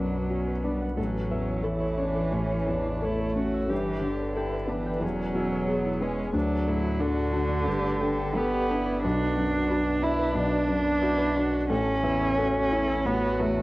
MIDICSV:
0, 0, Header, 1, 7, 480
1, 0, Start_track
1, 0, Tempo, 672646
1, 699, Time_signature, 4, 2, 24, 8
1, 1174, Tempo, 698487
1, 2134, Tempo, 660066
1, 5494, Tempo, 674916
1, 9732, End_track
2, 0, Start_track
2, 0, Title_t, "Harp"
2, 0, Program_c, 0, 46
2, 0, Note_on_c, 0, 71, 63
2, 0, Note_on_c, 0, 74, 47
2, 0, Note_on_c, 0, 78, 43
2, 95, Note_on_c, 0, 83, 45
2, 215, Note_off_c, 0, 74, 0
2, 224, Note_on_c, 0, 74, 45
2, 329, Note_off_c, 0, 71, 0
2, 338, Note_on_c, 0, 71, 58
2, 452, Note_off_c, 0, 74, 0
2, 461, Note_on_c, 0, 74, 48
2, 568, Note_off_c, 0, 78, 0
2, 576, Note_on_c, 0, 78, 48
2, 692, Note_on_c, 0, 69, 68
2, 716, Note_off_c, 0, 78, 0
2, 718, Note_off_c, 0, 71, 0
2, 718, Note_off_c, 0, 83, 0
2, 719, Note_off_c, 0, 74, 0
2, 934, Note_on_c, 0, 76, 48
2, 1050, Note_on_c, 0, 73, 47
2, 1160, Note_off_c, 0, 69, 0
2, 1169, Note_on_c, 0, 69, 69
2, 1273, Note_off_c, 0, 73, 0
2, 1281, Note_on_c, 0, 73, 49
2, 1389, Note_off_c, 0, 73, 0
2, 1398, Note_on_c, 0, 73, 50
2, 1512, Note_off_c, 0, 69, 0
2, 1520, Note_on_c, 0, 69, 72
2, 1631, Note_off_c, 0, 73, 0
2, 1639, Note_on_c, 0, 73, 45
2, 1750, Note_off_c, 0, 73, 0
2, 1758, Note_on_c, 0, 73, 47
2, 1874, Note_off_c, 0, 69, 0
2, 1882, Note_on_c, 0, 69, 69
2, 2008, Note_on_c, 0, 81, 48
2, 2118, Note_off_c, 0, 73, 0
2, 2126, Note_on_c, 0, 73, 49
2, 2240, Note_off_c, 0, 69, 0
2, 2249, Note_on_c, 0, 69, 67
2, 2363, Note_off_c, 0, 73, 0
2, 2372, Note_on_c, 0, 73, 51
2, 2486, Note_off_c, 0, 76, 0
2, 2495, Note_on_c, 0, 76, 50
2, 2607, Note_on_c, 0, 67, 78
2, 2634, Note_off_c, 0, 73, 0
2, 2635, Note_off_c, 0, 76, 0
2, 2846, Note_on_c, 0, 74, 53
2, 2975, Note_on_c, 0, 71, 54
2, 3086, Note_off_c, 0, 67, 0
2, 3095, Note_on_c, 0, 67, 79
2, 3204, Note_off_c, 0, 71, 0
2, 3213, Note_on_c, 0, 71, 52
2, 3324, Note_off_c, 0, 71, 0
2, 3333, Note_on_c, 0, 71, 57
2, 3446, Note_off_c, 0, 67, 0
2, 3454, Note_on_c, 0, 67, 75
2, 3572, Note_on_c, 0, 68, 54
2, 3593, Note_off_c, 0, 69, 0
2, 3593, Note_off_c, 0, 74, 0
2, 3595, Note_off_c, 0, 81, 0
2, 3596, Note_off_c, 0, 67, 0
2, 3687, Note_off_c, 0, 68, 0
2, 3696, Note_on_c, 0, 68, 58
2, 3813, Note_on_c, 0, 64, 75
2, 3936, Note_on_c, 0, 73, 55
2, 4054, Note_off_c, 0, 68, 0
2, 4063, Note_on_c, 0, 68, 56
2, 4172, Note_off_c, 0, 64, 0
2, 4180, Note_on_c, 0, 64, 67
2, 4291, Note_off_c, 0, 68, 0
2, 4300, Note_on_c, 0, 68, 59
2, 4403, Note_off_c, 0, 71, 0
2, 4412, Note_on_c, 0, 71, 55
2, 4531, Note_on_c, 0, 62, 82
2, 4548, Note_off_c, 0, 73, 0
2, 4550, Note_off_c, 0, 71, 0
2, 4551, Note_off_c, 0, 64, 0
2, 4552, Note_off_c, 0, 68, 0
2, 4772, Note_on_c, 0, 69, 58
2, 4888, Note_on_c, 0, 66, 60
2, 5001, Note_off_c, 0, 62, 0
2, 5009, Note_on_c, 0, 62, 90
2, 5121, Note_off_c, 0, 66, 0
2, 5130, Note_on_c, 0, 66, 58
2, 5239, Note_off_c, 0, 66, 0
2, 5248, Note_on_c, 0, 66, 61
2, 5356, Note_off_c, 0, 62, 0
2, 5365, Note_on_c, 0, 62, 82
2, 5491, Note_on_c, 0, 71, 56
2, 5512, Note_off_c, 0, 66, 0
2, 5599, Note_off_c, 0, 71, 0
2, 5608, Note_on_c, 0, 71, 60
2, 5736, Note_on_c, 0, 67, 83
2, 5862, Note_on_c, 0, 79, 58
2, 5976, Note_off_c, 0, 71, 0
2, 5985, Note_on_c, 0, 71, 60
2, 6096, Note_off_c, 0, 67, 0
2, 6105, Note_on_c, 0, 67, 81
2, 6219, Note_off_c, 0, 71, 0
2, 6227, Note_on_c, 0, 71, 64
2, 6342, Note_on_c, 0, 74, 64
2, 6462, Note_off_c, 0, 71, 0
2, 6470, Note_on_c, 0, 71, 95
2, 6485, Note_off_c, 0, 67, 0
2, 6486, Note_off_c, 0, 79, 0
2, 6490, Note_off_c, 0, 69, 0
2, 6702, Note_on_c, 0, 78, 60
2, 6808, Note_off_c, 0, 74, 0
2, 6817, Note_on_c, 0, 74, 65
2, 6923, Note_off_c, 0, 71, 0
2, 6932, Note_on_c, 0, 71, 92
2, 7045, Note_off_c, 0, 74, 0
2, 7054, Note_on_c, 0, 74, 62
2, 7161, Note_off_c, 0, 74, 0
2, 7170, Note_on_c, 0, 74, 64
2, 7280, Note_off_c, 0, 71, 0
2, 7289, Note_on_c, 0, 71, 97
2, 7399, Note_off_c, 0, 74, 0
2, 7407, Note_on_c, 0, 74, 57
2, 7513, Note_off_c, 0, 74, 0
2, 7522, Note_on_c, 0, 74, 64
2, 7629, Note_off_c, 0, 71, 0
2, 7637, Note_on_c, 0, 71, 89
2, 7755, Note_on_c, 0, 83, 61
2, 7868, Note_off_c, 0, 74, 0
2, 7877, Note_on_c, 0, 74, 65
2, 7985, Note_off_c, 0, 71, 0
2, 7993, Note_on_c, 0, 71, 90
2, 8115, Note_off_c, 0, 74, 0
2, 8123, Note_on_c, 0, 74, 65
2, 8141, Note_off_c, 0, 62, 0
2, 8236, Note_off_c, 0, 78, 0
2, 8244, Note_on_c, 0, 78, 64
2, 8363, Note_on_c, 0, 69, 92
2, 8379, Note_off_c, 0, 71, 0
2, 8379, Note_off_c, 0, 83, 0
2, 8384, Note_off_c, 0, 74, 0
2, 8384, Note_off_c, 0, 78, 0
2, 8601, Note_on_c, 0, 76, 62
2, 8722, Note_on_c, 0, 73, 62
2, 8836, Note_off_c, 0, 69, 0
2, 8844, Note_on_c, 0, 69, 92
2, 8956, Note_off_c, 0, 73, 0
2, 8964, Note_on_c, 0, 73, 64
2, 9072, Note_off_c, 0, 73, 0
2, 9080, Note_on_c, 0, 73, 61
2, 9192, Note_off_c, 0, 69, 0
2, 9200, Note_on_c, 0, 69, 88
2, 9314, Note_off_c, 0, 73, 0
2, 9323, Note_on_c, 0, 73, 61
2, 9435, Note_off_c, 0, 73, 0
2, 9443, Note_on_c, 0, 73, 67
2, 9563, Note_off_c, 0, 69, 0
2, 9571, Note_on_c, 0, 69, 81
2, 9695, Note_on_c, 0, 81, 58
2, 9732, Note_off_c, 0, 69, 0
2, 9732, Note_off_c, 0, 73, 0
2, 9732, Note_off_c, 0, 76, 0
2, 9732, Note_off_c, 0, 81, 0
2, 9732, End_track
3, 0, Start_track
3, 0, Title_t, "Ambient pad"
3, 0, Program_c, 1, 92
3, 0, Note_on_c, 1, 59, 58
3, 0, Note_on_c, 1, 66, 57
3, 0, Note_on_c, 1, 71, 54
3, 677, Note_off_c, 1, 59, 0
3, 677, Note_off_c, 1, 71, 0
3, 678, Note_off_c, 1, 66, 0
3, 691, Note_on_c, 1, 73, 56
3, 692, Note_on_c, 1, 64, 56
3, 694, Note_on_c, 1, 69, 58
3, 2614, Note_off_c, 1, 73, 0
3, 2615, Note_off_c, 1, 64, 0
3, 2617, Note_on_c, 1, 59, 58
3, 2617, Note_on_c, 1, 74, 59
3, 3575, Note_on_c, 1, 68, 64
3, 3576, Note_off_c, 1, 69, 0
3, 3578, Note_off_c, 1, 74, 0
3, 3578, Note_on_c, 1, 73, 65
3, 4530, Note_off_c, 1, 68, 0
3, 4531, Note_off_c, 1, 59, 0
3, 4531, Note_off_c, 1, 73, 0
3, 4539, Note_on_c, 1, 57, 56
3, 4543, Note_on_c, 1, 69, 64
3, 4545, Note_on_c, 1, 74, 65
3, 5500, Note_off_c, 1, 57, 0
3, 5507, Note_on_c, 1, 59, 67
3, 6476, Note_off_c, 1, 69, 0
3, 6480, Note_on_c, 1, 66, 69
3, 8355, Note_on_c, 1, 57, 68
3, 8360, Note_on_c, 1, 76, 67
3, 8364, Note_on_c, 1, 69, 68
3, 8369, Note_off_c, 1, 66, 0
3, 8370, Note_off_c, 1, 59, 0
3, 8372, Note_off_c, 1, 74, 0
3, 9732, Note_off_c, 1, 57, 0
3, 9732, Note_off_c, 1, 69, 0
3, 9732, Note_off_c, 1, 76, 0
3, 9732, End_track
4, 0, Start_track
4, 0, Title_t, "Viola"
4, 0, Program_c, 2, 41
4, 0, Note_on_c, 2, 62, 56
4, 214, Note_on_c, 2, 61, 53
4, 225, Note_off_c, 2, 62, 0
4, 462, Note_on_c, 2, 59, 52
4, 472, Note_off_c, 2, 61, 0
4, 693, Note_off_c, 2, 59, 0
4, 698, Note_on_c, 2, 61, 58
4, 1174, Note_on_c, 2, 64, 52
4, 1184, Note_off_c, 2, 61, 0
4, 1410, Note_on_c, 2, 62, 58
4, 1420, Note_off_c, 2, 64, 0
4, 1653, Note_on_c, 2, 61, 59
4, 1664, Note_off_c, 2, 62, 0
4, 1896, Note_on_c, 2, 62, 60
4, 1907, Note_off_c, 2, 61, 0
4, 2139, Note_on_c, 2, 64, 62
4, 2149, Note_off_c, 2, 62, 0
4, 2373, Note_off_c, 2, 64, 0
4, 2377, Note_on_c, 2, 66, 67
4, 2613, Note_on_c, 2, 67, 72
4, 2624, Note_off_c, 2, 66, 0
4, 3087, Note_off_c, 2, 67, 0
4, 3091, Note_on_c, 2, 64, 68
4, 3328, Note_on_c, 2, 62, 59
4, 3339, Note_off_c, 2, 64, 0
4, 3578, Note_on_c, 2, 61, 73
4, 3589, Note_off_c, 2, 62, 0
4, 4066, Note_on_c, 2, 59, 69
4, 4077, Note_off_c, 2, 61, 0
4, 4300, Note_on_c, 2, 61, 66
4, 4311, Note_off_c, 2, 59, 0
4, 4534, Note_off_c, 2, 61, 0
4, 4541, Note_on_c, 2, 62, 68
4, 4785, Note_on_c, 2, 64, 73
4, 4796, Note_off_c, 2, 62, 0
4, 5020, Note_on_c, 2, 66, 76
4, 5031, Note_off_c, 2, 64, 0
4, 5489, Note_on_c, 2, 67, 77
4, 5500, Note_off_c, 2, 66, 0
4, 5740, Note_off_c, 2, 67, 0
4, 5745, Note_on_c, 2, 69, 82
4, 6002, Note_on_c, 2, 67, 76
4, 6012, Note_off_c, 2, 69, 0
4, 6246, Note_on_c, 2, 64, 78
4, 6257, Note_off_c, 2, 67, 0
4, 6477, Note_on_c, 2, 66, 69
4, 6487, Note_off_c, 2, 64, 0
4, 6954, Note_on_c, 2, 62, 84
4, 6965, Note_off_c, 2, 66, 0
4, 7887, Note_on_c, 2, 64, 74
4, 7898, Note_off_c, 2, 62, 0
4, 8125, Note_on_c, 2, 66, 76
4, 8136, Note_off_c, 2, 64, 0
4, 8361, Note_off_c, 2, 66, 0
4, 8365, Note_on_c, 2, 69, 83
4, 8600, Note_off_c, 2, 69, 0
4, 8608, Note_on_c, 2, 64, 78
4, 8843, Note_off_c, 2, 64, 0
4, 8847, Note_on_c, 2, 66, 72
4, 9092, Note_on_c, 2, 64, 81
4, 9103, Note_off_c, 2, 66, 0
4, 9331, Note_off_c, 2, 64, 0
4, 9336, Note_on_c, 2, 66, 88
4, 9732, Note_off_c, 2, 66, 0
4, 9732, End_track
5, 0, Start_track
5, 0, Title_t, "Cello"
5, 0, Program_c, 3, 42
5, 0, Note_on_c, 3, 54, 74
5, 455, Note_on_c, 3, 55, 65
5, 466, Note_off_c, 3, 54, 0
5, 692, Note_off_c, 3, 55, 0
5, 696, Note_on_c, 3, 54, 70
5, 1163, Note_on_c, 3, 52, 85
5, 1174, Note_off_c, 3, 54, 0
5, 2131, Note_on_c, 3, 57, 75
5, 2142, Note_off_c, 3, 52, 0
5, 2609, Note_off_c, 3, 57, 0
5, 2614, Note_on_c, 3, 52, 81
5, 2851, Note_on_c, 3, 50, 67
5, 2861, Note_off_c, 3, 52, 0
5, 3348, Note_on_c, 3, 52, 76
5, 3358, Note_off_c, 3, 50, 0
5, 3590, Note_on_c, 3, 54, 92
5, 3601, Note_off_c, 3, 52, 0
5, 4303, Note_on_c, 3, 56, 80
5, 4314, Note_off_c, 3, 54, 0
5, 4535, Note_off_c, 3, 56, 0
5, 4541, Note_on_c, 3, 54, 90
5, 5010, Note_on_c, 3, 50, 101
5, 5021, Note_off_c, 3, 54, 0
5, 5991, Note_on_c, 3, 59, 101
5, 6002, Note_off_c, 3, 50, 0
5, 6461, Note_off_c, 3, 59, 0
5, 6465, Note_on_c, 3, 62, 110
5, 7178, Note_on_c, 3, 64, 102
5, 7189, Note_off_c, 3, 62, 0
5, 7403, Note_on_c, 3, 62, 111
5, 7414, Note_off_c, 3, 64, 0
5, 8361, Note_off_c, 3, 62, 0
5, 8364, Note_on_c, 3, 61, 115
5, 9327, Note_on_c, 3, 59, 102
5, 9337, Note_off_c, 3, 61, 0
5, 9564, Note_on_c, 3, 57, 88
5, 9574, Note_off_c, 3, 59, 0
5, 9732, Note_off_c, 3, 57, 0
5, 9732, End_track
6, 0, Start_track
6, 0, Title_t, "Felt piano"
6, 0, Program_c, 4, 0
6, 0, Control_c, 4, 64, 127
6, 0, Note_on_c, 4, 35, 42
6, 0, Note_on_c, 4, 42, 41
6, 0, Note_on_c, 4, 62, 39
6, 0, Note_on_c, 4, 66, 42
6, 209, Note_off_c, 4, 66, 0
6, 209, Note_on_c, 4, 66, 41
6, 362, Note_off_c, 4, 42, 0
6, 455, Note_off_c, 4, 62, 0
6, 455, Note_on_c, 4, 62, 47
6, 600, Note_off_c, 4, 66, 0
6, 663, Note_off_c, 4, 35, 0
6, 688, Note_on_c, 4, 33, 48
6, 697, Note_off_c, 4, 62, 0
6, 712, Control_c, 4, 64, 0
6, 824, Control_c, 4, 64, 127
6, 927, Note_on_c, 4, 40, 40
6, 1164, Note_on_c, 4, 69, 43
6, 1310, Note_off_c, 4, 40, 0
6, 1402, Note_on_c, 4, 61, 41
6, 1546, Note_off_c, 4, 69, 0
6, 1613, Note_off_c, 4, 33, 0
6, 1632, Note_on_c, 4, 33, 48
6, 1789, Note_off_c, 4, 61, 0
6, 1886, Note_on_c, 4, 40, 44
6, 2116, Note_on_c, 4, 69, 48
6, 2281, Note_off_c, 4, 40, 0
6, 2362, Note_on_c, 4, 61, 52
6, 2514, Note_off_c, 4, 69, 0
6, 2582, Note_off_c, 4, 33, 0
6, 2596, Note_on_c, 4, 43, 58
6, 2610, Note_off_c, 4, 61, 0
6, 2632, Control_c, 4, 64, 0
6, 2766, Control_c, 4, 64, 127
6, 2836, Note_on_c, 4, 50, 45
6, 3084, Note_on_c, 4, 69, 43
6, 3231, Note_off_c, 4, 50, 0
6, 3320, Note_on_c, 4, 59, 47
6, 3476, Note_off_c, 4, 69, 0
6, 3539, Note_off_c, 4, 43, 0
6, 3558, Note_on_c, 4, 40, 57
6, 3570, Note_off_c, 4, 59, 0
6, 3592, Control_c, 4, 64, 0
6, 3702, Control_c, 4, 64, 127
6, 3803, Note_on_c, 4, 47, 47
6, 4049, Note_on_c, 4, 68, 51
6, 4194, Note_off_c, 4, 47, 0
6, 4290, Note_on_c, 4, 59, 57
6, 4432, Note_off_c, 4, 68, 0
6, 4492, Note_off_c, 4, 40, 0
6, 4524, Note_on_c, 4, 38, 65
6, 4528, Note_off_c, 4, 59, 0
6, 4546, Control_c, 4, 64, 0
6, 4671, Control_c, 4, 64, 127
6, 4772, Note_on_c, 4, 45, 47
6, 5013, Note_on_c, 4, 69, 56
6, 5159, Note_off_c, 4, 45, 0
6, 5248, Note_on_c, 4, 62, 55
6, 5399, Note_off_c, 4, 69, 0
6, 5463, Note_off_c, 4, 38, 0
6, 5490, Note_on_c, 4, 43, 63
6, 5493, Note_off_c, 4, 62, 0
6, 5509, Control_c, 4, 64, 0
6, 5613, Control_c, 4, 64, 127
6, 5740, Note_on_c, 4, 50, 58
6, 5993, Note_on_c, 4, 69, 57
6, 6137, Note_off_c, 4, 50, 0
6, 6233, Note_on_c, 4, 62, 61
6, 6376, Note_off_c, 4, 69, 0
6, 6440, Note_off_c, 4, 43, 0
6, 6470, Note_off_c, 4, 62, 0
6, 6474, Note_on_c, 4, 35, 69
6, 6483, Control_c, 4, 64, 0
6, 6598, Control_c, 4, 64, 127
6, 6707, Note_on_c, 4, 42, 55
6, 6940, Note_on_c, 4, 66, 56
6, 7082, Note_off_c, 4, 42, 0
6, 7169, Note_on_c, 4, 62, 54
6, 7316, Note_off_c, 4, 66, 0
6, 7385, Note_off_c, 4, 35, 0
6, 7401, Note_on_c, 4, 35, 61
6, 7549, Note_off_c, 4, 62, 0
6, 7642, Note_on_c, 4, 42, 60
6, 7880, Note_on_c, 4, 66, 61
6, 8026, Note_off_c, 4, 42, 0
6, 8123, Note_on_c, 4, 62, 58
6, 8266, Note_off_c, 4, 66, 0
6, 8331, Note_off_c, 4, 35, 0
6, 8364, Note_off_c, 4, 62, 0
6, 8364, Note_on_c, 4, 33, 77
6, 8377, Control_c, 4, 64, 0
6, 8515, Control_c, 4, 64, 127
6, 8600, Note_on_c, 4, 40, 55
6, 8842, Note_on_c, 4, 69, 56
6, 8990, Note_off_c, 4, 40, 0
6, 9079, Note_on_c, 4, 64, 58
6, 9234, Note_off_c, 4, 69, 0
6, 9304, Note_off_c, 4, 33, 0
6, 9325, Note_on_c, 4, 33, 60
6, 9473, Note_off_c, 4, 64, 0
6, 9568, Note_on_c, 4, 40, 57
6, 9732, Note_off_c, 4, 33, 0
6, 9732, Note_off_c, 4, 40, 0
6, 9732, End_track
7, 0, Start_track
7, 0, Title_t, "Sub bass"
7, 0, Program_c, 5, 38
7, 0, Note_on_c, 5, 35, 57
7, 715, Note_on_c, 5, 33, 58
7, 726, Note_off_c, 5, 35, 0
7, 2620, Note_on_c, 5, 31, 62
7, 2631, Note_off_c, 5, 33, 0
7, 3583, Note_on_c, 5, 28, 70
7, 3594, Note_off_c, 5, 31, 0
7, 4533, Note_on_c, 5, 38, 70
7, 4544, Note_off_c, 5, 28, 0
7, 5504, Note_on_c, 5, 31, 72
7, 5515, Note_off_c, 5, 38, 0
7, 6475, Note_on_c, 5, 35, 67
7, 6485, Note_off_c, 5, 31, 0
7, 8371, Note_on_c, 5, 33, 71
7, 8382, Note_off_c, 5, 35, 0
7, 9732, Note_off_c, 5, 33, 0
7, 9732, End_track
0, 0, End_of_file